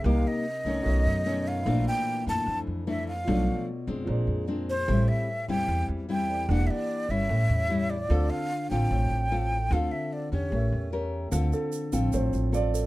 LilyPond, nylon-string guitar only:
\new Staff \with { instrumentName = "Nylon-string guitar" } { \time 4/4 \key d \minor \tempo 4 = 149 << { <bes ees' g'>4 r8 <ees a cis'>4. <dis a cis'>4 | <e a d'>4. <e a d'>4. <e a d'>8 r8 | <f a d'>4 r8 <gis c' d'>4. <aes c' d'>8 r8 | <g c' e'>4 r8 <g c' e'>4. <g c' e'>4 |
<bes d' g'>4. <g cis' e'>4. <g cis' e'>8 r8 | <c' f' a'>4 r8 <c' f' a'>4. <c' f' a'>8 r8 | <c' f' a'>4. <cis' g'>4. <cis' g' bes'>4 | <c' f' a'>4. <c' f' a'>4. <c' f' a'>4 | } \\ { c2 b,2 | bes,2 f,2 | b,2 bes,2 | a,2 e2 |
e2 a,2 | d2 a,2 | d2 a2 | d2 a,2 | } >> }